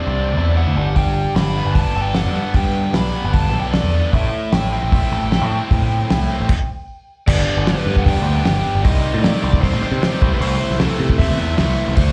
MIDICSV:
0, 0, Header, 1, 5, 480
1, 0, Start_track
1, 0, Key_signature, 1, "major"
1, 0, Tempo, 395517
1, 1166, Time_signature, 4, 2, 24, 8
1, 7884, Tempo, 391134
1, 14789, End_track
2, 0, Start_track
2, 0, Title_t, "Overdriven electric guitar"
2, 0, Program_c, 0, 29
2, 0, Note_on_c, 0, 74, 85
2, 695, Note_on_c, 0, 78, 91
2, 718, Note_off_c, 0, 74, 0
2, 1167, Note_off_c, 0, 78, 0
2, 1172, Note_on_c, 0, 79, 90
2, 1647, Note_off_c, 0, 79, 0
2, 1652, Note_on_c, 0, 83, 101
2, 2124, Note_off_c, 0, 83, 0
2, 2129, Note_on_c, 0, 81, 100
2, 2439, Note_off_c, 0, 81, 0
2, 2444, Note_on_c, 0, 79, 92
2, 2621, Note_off_c, 0, 79, 0
2, 2621, Note_on_c, 0, 78, 91
2, 3105, Note_off_c, 0, 78, 0
2, 3110, Note_on_c, 0, 79, 92
2, 3583, Note_off_c, 0, 79, 0
2, 3588, Note_on_c, 0, 83, 91
2, 4048, Note_off_c, 0, 83, 0
2, 4053, Note_on_c, 0, 81, 104
2, 4349, Note_off_c, 0, 81, 0
2, 4369, Note_on_c, 0, 79, 74
2, 4430, Note_off_c, 0, 79, 0
2, 4521, Note_on_c, 0, 74, 85
2, 5007, Note_off_c, 0, 74, 0
2, 5012, Note_on_c, 0, 76, 88
2, 5457, Note_off_c, 0, 76, 0
2, 5494, Note_on_c, 0, 79, 93
2, 5723, Note_off_c, 0, 79, 0
2, 5738, Note_on_c, 0, 79, 87
2, 8320, Note_off_c, 0, 79, 0
2, 8839, Note_on_c, 0, 74, 93
2, 9323, Note_on_c, 0, 71, 81
2, 9339, Note_off_c, 0, 74, 0
2, 9711, Note_on_c, 0, 78, 71
2, 9733, Note_off_c, 0, 71, 0
2, 9775, Note_off_c, 0, 78, 0
2, 9780, Note_on_c, 0, 79, 107
2, 10257, Note_off_c, 0, 79, 0
2, 10272, Note_on_c, 0, 79, 102
2, 10750, Note_off_c, 0, 79, 0
2, 10755, Note_on_c, 0, 75, 87
2, 11207, Note_off_c, 0, 75, 0
2, 11240, Note_on_c, 0, 74, 95
2, 11464, Note_off_c, 0, 74, 0
2, 11479, Note_on_c, 0, 74, 103
2, 11711, Note_off_c, 0, 74, 0
2, 11716, Note_on_c, 0, 72, 102
2, 11960, Note_off_c, 0, 72, 0
2, 11975, Note_on_c, 0, 72, 87
2, 12194, Note_off_c, 0, 72, 0
2, 12216, Note_on_c, 0, 72, 90
2, 12546, Note_off_c, 0, 72, 0
2, 12604, Note_on_c, 0, 71, 77
2, 12669, Note_off_c, 0, 71, 0
2, 12674, Note_on_c, 0, 72, 93
2, 13155, Note_on_c, 0, 69, 102
2, 13173, Note_off_c, 0, 72, 0
2, 13635, Note_on_c, 0, 76, 114
2, 13653, Note_off_c, 0, 69, 0
2, 14095, Note_off_c, 0, 76, 0
2, 14110, Note_on_c, 0, 76, 103
2, 14589, Note_off_c, 0, 76, 0
2, 14594, Note_on_c, 0, 72, 98
2, 14789, Note_off_c, 0, 72, 0
2, 14789, End_track
3, 0, Start_track
3, 0, Title_t, "Distorted electric guitar"
3, 0, Program_c, 1, 30
3, 0, Note_on_c, 1, 48, 78
3, 0, Note_on_c, 1, 60, 61
3, 0, Note_on_c, 1, 62, 71
3, 197, Note_off_c, 1, 62, 0
3, 202, Note_on_c, 1, 62, 68
3, 443, Note_on_c, 1, 64, 70
3, 447, Note_off_c, 1, 48, 0
3, 681, Note_off_c, 1, 62, 0
3, 686, Note_on_c, 1, 62, 58
3, 924, Note_on_c, 1, 55, 66
3, 925, Note_off_c, 1, 64, 0
3, 927, Note_off_c, 1, 60, 0
3, 1164, Note_off_c, 1, 55, 0
3, 1169, Note_on_c, 1, 55, 65
3, 1639, Note_off_c, 1, 62, 0
3, 1644, Note_on_c, 1, 62, 62
3, 1881, Note_on_c, 1, 59, 60
3, 2108, Note_off_c, 1, 62, 0
3, 2123, Note_on_c, 1, 62, 65
3, 2366, Note_on_c, 1, 69, 78
3, 2403, Note_off_c, 1, 55, 0
3, 2595, Note_off_c, 1, 62, 0
3, 2609, Note_on_c, 1, 62, 62
3, 2834, Note_off_c, 1, 59, 0
3, 2849, Note_on_c, 1, 59, 61
3, 3089, Note_on_c, 1, 55, 67
3, 3556, Note_off_c, 1, 62, 0
3, 3571, Note_on_c, 1, 62, 72
3, 3808, Note_off_c, 1, 59, 0
3, 3823, Note_on_c, 1, 59, 66
3, 3859, Note_off_c, 1, 69, 0
3, 4030, Note_off_c, 1, 62, 0
3, 4045, Note_on_c, 1, 62, 72
3, 4293, Note_on_c, 1, 69, 76
3, 4329, Note_off_c, 1, 55, 0
3, 4509, Note_off_c, 1, 62, 0
3, 4523, Note_on_c, 1, 62, 66
3, 4767, Note_off_c, 1, 59, 0
3, 4782, Note_on_c, 1, 59, 68
3, 5006, Note_off_c, 1, 62, 0
3, 5016, Note_off_c, 1, 59, 0
3, 5018, Note_on_c, 1, 45, 75
3, 5503, Note_on_c, 1, 64, 66
3, 5736, Note_on_c, 1, 60, 68
3, 5962, Note_off_c, 1, 64, 0
3, 5976, Note_on_c, 1, 64, 66
3, 6208, Note_off_c, 1, 69, 0
3, 6213, Note_off_c, 1, 45, 0
3, 6213, Note_on_c, 1, 69, 70
3, 6440, Note_off_c, 1, 64, 0
3, 6454, Note_on_c, 1, 64, 66
3, 6674, Note_off_c, 1, 60, 0
3, 6689, Note_on_c, 1, 60, 66
3, 6936, Note_on_c, 1, 45, 72
3, 7394, Note_off_c, 1, 64, 0
3, 7407, Note_off_c, 1, 69, 0
3, 7409, Note_on_c, 1, 64, 64
3, 7629, Note_off_c, 1, 60, 0
3, 7644, Note_on_c, 1, 60, 63
3, 7882, Note_off_c, 1, 60, 0
3, 7884, Note_off_c, 1, 64, 0
3, 7887, Note_off_c, 1, 45, 0
3, 8832, Note_on_c, 1, 43, 89
3, 8839, Note_on_c, 1, 50, 99
3, 8848, Note_on_c, 1, 55, 95
3, 8854, Note_on_c, 1, 59, 102
3, 8860, Note_on_c, 1, 62, 107
3, 8865, Note_on_c, 1, 67, 108
3, 9300, Note_off_c, 1, 43, 0
3, 9311, Note_off_c, 1, 50, 0
3, 9315, Note_on_c, 1, 43, 97
3, 9320, Note_off_c, 1, 59, 0
3, 9326, Note_off_c, 1, 55, 0
3, 9326, Note_on_c, 1, 50, 108
3, 9331, Note_on_c, 1, 55, 95
3, 9335, Note_on_c, 1, 59, 106
3, 9337, Note_off_c, 1, 62, 0
3, 9341, Note_on_c, 1, 62, 107
3, 9348, Note_off_c, 1, 67, 0
3, 9353, Note_on_c, 1, 67, 105
3, 9546, Note_off_c, 1, 67, 0
3, 9560, Note_on_c, 1, 67, 77
3, 9561, Note_off_c, 1, 62, 0
3, 9567, Note_off_c, 1, 59, 0
3, 9575, Note_on_c, 1, 62, 70
3, 9581, Note_off_c, 1, 55, 0
3, 9582, Note_on_c, 1, 59, 59
3, 9595, Note_on_c, 1, 55, 61
3, 9787, Note_off_c, 1, 55, 0
3, 9802, Note_off_c, 1, 43, 0
3, 9802, Note_off_c, 1, 59, 0
3, 9802, Note_on_c, 1, 55, 75
3, 9808, Note_off_c, 1, 50, 0
3, 9810, Note_off_c, 1, 62, 0
3, 9817, Note_on_c, 1, 59, 78
3, 9820, Note_off_c, 1, 67, 0
3, 9824, Note_on_c, 1, 62, 94
3, 9835, Note_on_c, 1, 67, 86
3, 10029, Note_off_c, 1, 67, 0
3, 10042, Note_off_c, 1, 62, 0
3, 10044, Note_on_c, 1, 67, 81
3, 10053, Note_off_c, 1, 59, 0
3, 10056, Note_on_c, 1, 62, 72
3, 10059, Note_off_c, 1, 55, 0
3, 10068, Note_on_c, 1, 59, 69
3, 10073, Note_on_c, 1, 55, 66
3, 10260, Note_off_c, 1, 55, 0
3, 10274, Note_off_c, 1, 59, 0
3, 10275, Note_on_c, 1, 55, 78
3, 10285, Note_off_c, 1, 62, 0
3, 10289, Note_on_c, 1, 59, 85
3, 10298, Note_off_c, 1, 67, 0
3, 10300, Note_on_c, 1, 62, 75
3, 10313, Note_on_c, 1, 67, 97
3, 10747, Note_off_c, 1, 55, 0
3, 10754, Note_off_c, 1, 59, 0
3, 10758, Note_on_c, 1, 48, 108
3, 10760, Note_off_c, 1, 62, 0
3, 10766, Note_off_c, 1, 67, 0
3, 10769, Note_on_c, 1, 51, 100
3, 10778, Note_on_c, 1, 55, 105
3, 10783, Note_on_c, 1, 60, 101
3, 10796, Note_on_c, 1, 67, 101
3, 11237, Note_off_c, 1, 48, 0
3, 11240, Note_off_c, 1, 51, 0
3, 11242, Note_on_c, 1, 48, 87
3, 11244, Note_off_c, 1, 55, 0
3, 11255, Note_on_c, 1, 51, 105
3, 11259, Note_on_c, 1, 55, 103
3, 11261, Note_off_c, 1, 67, 0
3, 11262, Note_off_c, 1, 60, 0
3, 11267, Note_on_c, 1, 60, 92
3, 11276, Note_on_c, 1, 67, 103
3, 11461, Note_off_c, 1, 67, 0
3, 11476, Note_on_c, 1, 67, 79
3, 11491, Note_off_c, 1, 60, 0
3, 11496, Note_on_c, 1, 60, 78
3, 11497, Note_off_c, 1, 55, 0
3, 11512, Note_on_c, 1, 55, 68
3, 11707, Note_off_c, 1, 51, 0
3, 11718, Note_off_c, 1, 55, 0
3, 11722, Note_on_c, 1, 51, 88
3, 11730, Note_off_c, 1, 60, 0
3, 11733, Note_on_c, 1, 55, 96
3, 11738, Note_off_c, 1, 67, 0
3, 11745, Note_on_c, 1, 60, 94
3, 11752, Note_on_c, 1, 67, 100
3, 11938, Note_off_c, 1, 67, 0
3, 11953, Note_on_c, 1, 67, 78
3, 11961, Note_off_c, 1, 60, 0
3, 11975, Note_on_c, 1, 60, 69
3, 11978, Note_off_c, 1, 55, 0
3, 11992, Note_on_c, 1, 55, 62
3, 12190, Note_off_c, 1, 51, 0
3, 12203, Note_off_c, 1, 55, 0
3, 12205, Note_on_c, 1, 51, 92
3, 12217, Note_off_c, 1, 60, 0
3, 12218, Note_on_c, 1, 55, 85
3, 12223, Note_off_c, 1, 67, 0
3, 12232, Note_on_c, 1, 60, 76
3, 12238, Note_on_c, 1, 67, 84
3, 12431, Note_off_c, 1, 51, 0
3, 12435, Note_off_c, 1, 67, 0
3, 12436, Note_off_c, 1, 60, 0
3, 12437, Note_off_c, 1, 55, 0
3, 12440, Note_on_c, 1, 64, 106
3, 12451, Note_on_c, 1, 60, 84
3, 12456, Note_on_c, 1, 57, 86
3, 12467, Note_on_c, 1, 52, 85
3, 12468, Note_off_c, 1, 48, 0
3, 12473, Note_on_c, 1, 48, 83
3, 12664, Note_off_c, 1, 48, 0
3, 12679, Note_on_c, 1, 48, 87
3, 12680, Note_off_c, 1, 52, 0
3, 12694, Note_off_c, 1, 60, 0
3, 12695, Note_off_c, 1, 57, 0
3, 12695, Note_on_c, 1, 52, 97
3, 12699, Note_off_c, 1, 64, 0
3, 12700, Note_on_c, 1, 57, 113
3, 12709, Note_on_c, 1, 60, 105
3, 12714, Note_on_c, 1, 64, 125
3, 13145, Note_off_c, 1, 48, 0
3, 13156, Note_off_c, 1, 52, 0
3, 13160, Note_on_c, 1, 48, 103
3, 13171, Note_on_c, 1, 52, 103
3, 13172, Note_off_c, 1, 60, 0
3, 13173, Note_off_c, 1, 57, 0
3, 13178, Note_off_c, 1, 64, 0
3, 13178, Note_on_c, 1, 57, 99
3, 13187, Note_on_c, 1, 60, 112
3, 13192, Note_on_c, 1, 64, 103
3, 13392, Note_off_c, 1, 64, 0
3, 13407, Note_on_c, 1, 64, 71
3, 13411, Note_off_c, 1, 60, 0
3, 13425, Note_on_c, 1, 60, 60
3, 13433, Note_off_c, 1, 57, 0
3, 13438, Note_on_c, 1, 57, 65
3, 13627, Note_off_c, 1, 52, 0
3, 13641, Note_off_c, 1, 48, 0
3, 13642, Note_on_c, 1, 52, 77
3, 13645, Note_off_c, 1, 57, 0
3, 13655, Note_off_c, 1, 60, 0
3, 13660, Note_on_c, 1, 57, 84
3, 13663, Note_off_c, 1, 64, 0
3, 13670, Note_on_c, 1, 60, 97
3, 13677, Note_on_c, 1, 64, 98
3, 13872, Note_off_c, 1, 64, 0
3, 13887, Note_on_c, 1, 64, 78
3, 13894, Note_off_c, 1, 60, 0
3, 13908, Note_on_c, 1, 60, 66
3, 13911, Note_off_c, 1, 57, 0
3, 13926, Note_on_c, 1, 57, 70
3, 14101, Note_off_c, 1, 52, 0
3, 14116, Note_on_c, 1, 52, 74
3, 14118, Note_off_c, 1, 57, 0
3, 14128, Note_off_c, 1, 60, 0
3, 14133, Note_on_c, 1, 57, 91
3, 14139, Note_off_c, 1, 64, 0
3, 14143, Note_on_c, 1, 60, 79
3, 14154, Note_on_c, 1, 64, 87
3, 14583, Note_off_c, 1, 52, 0
3, 14592, Note_off_c, 1, 57, 0
3, 14597, Note_off_c, 1, 60, 0
3, 14598, Note_on_c, 1, 50, 93
3, 14602, Note_off_c, 1, 64, 0
3, 14610, Note_on_c, 1, 57, 109
3, 14619, Note_on_c, 1, 62, 99
3, 14632, Note_on_c, 1, 66, 103
3, 14789, Note_off_c, 1, 50, 0
3, 14789, Note_off_c, 1, 57, 0
3, 14789, Note_off_c, 1, 62, 0
3, 14789, Note_off_c, 1, 66, 0
3, 14789, End_track
4, 0, Start_track
4, 0, Title_t, "Picked electric bass"
4, 0, Program_c, 2, 34
4, 82, Note_on_c, 2, 36, 89
4, 439, Note_off_c, 2, 36, 0
4, 439, Note_on_c, 2, 40, 100
4, 745, Note_off_c, 2, 40, 0
4, 801, Note_on_c, 2, 38, 75
4, 904, Note_off_c, 2, 38, 0
4, 926, Note_on_c, 2, 31, 96
4, 1533, Note_off_c, 2, 31, 0
4, 1646, Note_on_c, 2, 31, 91
4, 1950, Note_off_c, 2, 31, 0
4, 2010, Note_on_c, 2, 31, 83
4, 2211, Note_off_c, 2, 31, 0
4, 2372, Note_on_c, 2, 31, 91
4, 2726, Note_on_c, 2, 43, 78
4, 2744, Note_off_c, 2, 31, 0
4, 2929, Note_off_c, 2, 43, 0
4, 3089, Note_on_c, 2, 43, 113
4, 3494, Note_off_c, 2, 43, 0
4, 3560, Note_on_c, 2, 35, 95
4, 3766, Note_off_c, 2, 35, 0
4, 3935, Note_on_c, 2, 31, 83
4, 4290, Note_off_c, 2, 31, 0
4, 4290, Note_on_c, 2, 35, 108
4, 4593, Note_off_c, 2, 35, 0
4, 4655, Note_on_c, 2, 40, 79
4, 4855, Note_off_c, 2, 40, 0
4, 5015, Note_on_c, 2, 33, 96
4, 5214, Note_off_c, 2, 33, 0
4, 5490, Note_on_c, 2, 33, 94
4, 5792, Note_off_c, 2, 33, 0
4, 5859, Note_on_c, 2, 33, 80
4, 6056, Note_off_c, 2, 33, 0
4, 6210, Note_on_c, 2, 33, 98
4, 6572, Note_off_c, 2, 33, 0
4, 6572, Note_on_c, 2, 45, 78
4, 6771, Note_off_c, 2, 45, 0
4, 6930, Note_on_c, 2, 45, 107
4, 7331, Note_off_c, 2, 45, 0
4, 7415, Note_on_c, 2, 36, 87
4, 7611, Note_off_c, 2, 36, 0
4, 7770, Note_on_c, 2, 33, 81
4, 7868, Note_off_c, 2, 33, 0
4, 8842, Note_on_c, 2, 31, 113
4, 9046, Note_off_c, 2, 31, 0
4, 9203, Note_on_c, 2, 31, 91
4, 9407, Note_off_c, 2, 31, 0
4, 9558, Note_on_c, 2, 43, 107
4, 9929, Note_on_c, 2, 38, 89
4, 9948, Note_off_c, 2, 43, 0
4, 10232, Note_off_c, 2, 38, 0
4, 10289, Note_on_c, 2, 31, 103
4, 10491, Note_off_c, 2, 31, 0
4, 10648, Note_on_c, 2, 31, 85
4, 10749, Note_off_c, 2, 31, 0
4, 10772, Note_on_c, 2, 36, 99
4, 10972, Note_off_c, 2, 36, 0
4, 11131, Note_on_c, 2, 45, 96
4, 11331, Note_off_c, 2, 45, 0
4, 11491, Note_on_c, 2, 36, 106
4, 11792, Note_off_c, 2, 36, 0
4, 11846, Note_on_c, 2, 33, 104
4, 11947, Note_off_c, 2, 33, 0
4, 12081, Note_on_c, 2, 48, 108
4, 12285, Note_off_c, 2, 48, 0
4, 12454, Note_on_c, 2, 36, 116
4, 12551, Note_off_c, 2, 36, 0
4, 12681, Note_on_c, 2, 36, 122
4, 12884, Note_off_c, 2, 36, 0
4, 13049, Note_on_c, 2, 36, 93
4, 13248, Note_off_c, 2, 36, 0
4, 13408, Note_on_c, 2, 48, 104
4, 13777, Note_on_c, 2, 40, 97
4, 13795, Note_off_c, 2, 48, 0
4, 14073, Note_off_c, 2, 40, 0
4, 14135, Note_on_c, 2, 36, 114
4, 14331, Note_off_c, 2, 36, 0
4, 14488, Note_on_c, 2, 36, 95
4, 14586, Note_off_c, 2, 36, 0
4, 14604, Note_on_c, 2, 38, 105
4, 14789, Note_off_c, 2, 38, 0
4, 14789, End_track
5, 0, Start_track
5, 0, Title_t, "Drums"
5, 1165, Note_on_c, 9, 46, 54
5, 1166, Note_on_c, 9, 36, 93
5, 1287, Note_off_c, 9, 46, 0
5, 1288, Note_off_c, 9, 36, 0
5, 1652, Note_on_c, 9, 46, 50
5, 1654, Note_on_c, 9, 38, 105
5, 1774, Note_off_c, 9, 46, 0
5, 1775, Note_off_c, 9, 38, 0
5, 2127, Note_on_c, 9, 36, 111
5, 2127, Note_on_c, 9, 46, 54
5, 2248, Note_off_c, 9, 36, 0
5, 2248, Note_off_c, 9, 46, 0
5, 2602, Note_on_c, 9, 46, 49
5, 2604, Note_on_c, 9, 38, 94
5, 2724, Note_off_c, 9, 46, 0
5, 2725, Note_off_c, 9, 38, 0
5, 3083, Note_on_c, 9, 46, 51
5, 3087, Note_on_c, 9, 36, 105
5, 3204, Note_off_c, 9, 46, 0
5, 3208, Note_off_c, 9, 36, 0
5, 3568, Note_on_c, 9, 46, 51
5, 3569, Note_on_c, 9, 38, 111
5, 3689, Note_off_c, 9, 46, 0
5, 3690, Note_off_c, 9, 38, 0
5, 4047, Note_on_c, 9, 46, 55
5, 4052, Note_on_c, 9, 36, 113
5, 4168, Note_off_c, 9, 46, 0
5, 4173, Note_off_c, 9, 36, 0
5, 4533, Note_on_c, 9, 46, 51
5, 4534, Note_on_c, 9, 38, 110
5, 4655, Note_off_c, 9, 46, 0
5, 4656, Note_off_c, 9, 38, 0
5, 5015, Note_on_c, 9, 36, 105
5, 5017, Note_on_c, 9, 46, 53
5, 5136, Note_off_c, 9, 36, 0
5, 5138, Note_off_c, 9, 46, 0
5, 5492, Note_on_c, 9, 46, 54
5, 5493, Note_on_c, 9, 38, 123
5, 5613, Note_off_c, 9, 46, 0
5, 5614, Note_off_c, 9, 38, 0
5, 5975, Note_on_c, 9, 36, 116
5, 5975, Note_on_c, 9, 46, 61
5, 6096, Note_off_c, 9, 36, 0
5, 6097, Note_off_c, 9, 46, 0
5, 6456, Note_on_c, 9, 46, 49
5, 6458, Note_on_c, 9, 38, 96
5, 6578, Note_off_c, 9, 46, 0
5, 6579, Note_off_c, 9, 38, 0
5, 6929, Note_on_c, 9, 36, 103
5, 6934, Note_on_c, 9, 46, 57
5, 7051, Note_off_c, 9, 36, 0
5, 7055, Note_off_c, 9, 46, 0
5, 7407, Note_on_c, 9, 46, 54
5, 7409, Note_on_c, 9, 38, 110
5, 7529, Note_off_c, 9, 46, 0
5, 7530, Note_off_c, 9, 38, 0
5, 7876, Note_on_c, 9, 49, 99
5, 7880, Note_on_c, 9, 36, 107
5, 7998, Note_off_c, 9, 49, 0
5, 8002, Note_off_c, 9, 36, 0
5, 8840, Note_on_c, 9, 49, 122
5, 8843, Note_on_c, 9, 36, 105
5, 8963, Note_off_c, 9, 49, 0
5, 8966, Note_off_c, 9, 36, 0
5, 9326, Note_on_c, 9, 46, 75
5, 9327, Note_on_c, 9, 38, 127
5, 9449, Note_off_c, 9, 46, 0
5, 9450, Note_off_c, 9, 38, 0
5, 9686, Note_on_c, 9, 36, 88
5, 9803, Note_on_c, 9, 46, 72
5, 9805, Note_off_c, 9, 36, 0
5, 9805, Note_on_c, 9, 36, 108
5, 9926, Note_off_c, 9, 46, 0
5, 9928, Note_off_c, 9, 36, 0
5, 10286, Note_on_c, 9, 46, 62
5, 10287, Note_on_c, 9, 38, 113
5, 10409, Note_off_c, 9, 46, 0
5, 10410, Note_off_c, 9, 38, 0
5, 10769, Note_on_c, 9, 46, 67
5, 10771, Note_on_c, 9, 36, 117
5, 10892, Note_off_c, 9, 46, 0
5, 10894, Note_off_c, 9, 36, 0
5, 11253, Note_on_c, 9, 46, 70
5, 11254, Note_on_c, 9, 38, 124
5, 11376, Note_off_c, 9, 46, 0
5, 11377, Note_off_c, 9, 38, 0
5, 11612, Note_on_c, 9, 36, 100
5, 11733, Note_off_c, 9, 36, 0
5, 11733, Note_on_c, 9, 36, 111
5, 11738, Note_on_c, 9, 46, 72
5, 11856, Note_off_c, 9, 36, 0
5, 11861, Note_off_c, 9, 46, 0
5, 12219, Note_on_c, 9, 46, 67
5, 12220, Note_on_c, 9, 38, 117
5, 12341, Note_off_c, 9, 46, 0
5, 12343, Note_off_c, 9, 38, 0
5, 12453, Note_on_c, 9, 36, 111
5, 12575, Note_off_c, 9, 36, 0
5, 12695, Note_on_c, 9, 46, 78
5, 12818, Note_off_c, 9, 46, 0
5, 13052, Note_on_c, 9, 38, 32
5, 13163, Note_on_c, 9, 46, 74
5, 13164, Note_off_c, 9, 38, 0
5, 13164, Note_on_c, 9, 38, 121
5, 13285, Note_off_c, 9, 46, 0
5, 13287, Note_off_c, 9, 38, 0
5, 13528, Note_on_c, 9, 36, 89
5, 13648, Note_off_c, 9, 36, 0
5, 13648, Note_on_c, 9, 36, 106
5, 13651, Note_on_c, 9, 46, 74
5, 13771, Note_off_c, 9, 36, 0
5, 13774, Note_off_c, 9, 46, 0
5, 14122, Note_on_c, 9, 46, 72
5, 14123, Note_on_c, 9, 38, 100
5, 14245, Note_off_c, 9, 46, 0
5, 14246, Note_off_c, 9, 38, 0
5, 14486, Note_on_c, 9, 38, 30
5, 14598, Note_on_c, 9, 46, 68
5, 14604, Note_on_c, 9, 36, 108
5, 14608, Note_off_c, 9, 38, 0
5, 14720, Note_off_c, 9, 46, 0
5, 14727, Note_off_c, 9, 36, 0
5, 14789, End_track
0, 0, End_of_file